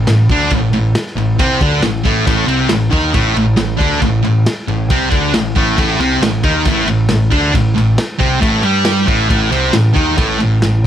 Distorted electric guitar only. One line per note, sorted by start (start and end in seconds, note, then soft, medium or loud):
0.08 0.24 A2 medium
0.31 0.51 D3 medium
0.31 0.51 D4 loud
0.52 0.69 A2 medium
0.73 0.90 A2 medium
1.17 1.34 A2 medium
1.39 1.60 C3 loud
1.39 1.60 C4 loud
1.62 1.82 D3 loud
1.62 1.82 D4 loud
1.83 2.00 A2 medium
2.04 2.25 A2 medium
2.04 2.26 A3 medium
2.27 2.47 A2 medium
2.27 2.47 A3 loud
2.48 2.69 C3 medium
2.48 2.69 C4 loud
2.70 2.87 A2 medium
2.90 3.12 D#3 medium
2.90 3.13 D#4 loud
3.14 3.33 A2 medium
3.14 3.35 A3 loud
3.34 3.53 A2 medium
3.56 3.75 A2 medium
3.77 4.00 D3 medium
3.77 4.00 D4 medium
4.01 4.19 A2 medium
4.23 4.41 A2 medium
4.68 4.86 A2 medium
4.91 5.10 C3 medium
4.91 5.10 C4 loud
5.11 5.33 D3 medium
5.11 5.33 D4 loud
5.34 5.52 A2 medium
5.55 5.77 A2 medium
5.55 5.78 A3 loud
5.78 5.99 A2 medium
5.78 6.00 A3 loud
6.01 6.22 C3 medium
6.01 6.22 C4 medium
6.23 6.40 A2 medium
6.44 6.65 D#3 medium
6.44 6.65 D#4 medium
6.67 6.87 A2 medium
6.67 6.88 A3 loud
6.88 7.06 A2 medium
7.10 7.28 A2 medium
7.31 7.53 D3 medium
7.31 7.53 D4 medium
7.54 7.72 A2 medium
7.76 7.94 A2 medium
8.19 8.40 C3 medium
8.19 8.41 C4 medium
8.40 8.63 A2 loud
8.40 8.63 A3 loud
8.62 9.07 G3 medium
8.62 9.07 G4 loud
9.06 9.28 A2 medium
9.06 9.28 A3 medium
9.29 9.50 A2 medium
9.29 9.51 A3 loud
9.51 9.73 C3 medium
9.51 9.74 C4 loud
9.73 9.92 A2 medium
9.94 10.17 D#3 medium
9.94 10.17 D#4 loud
10.17 10.38 A2 loud
10.17 10.40 A3 loud
10.39 10.58 A2 medium
10.63 10.81 A2 medium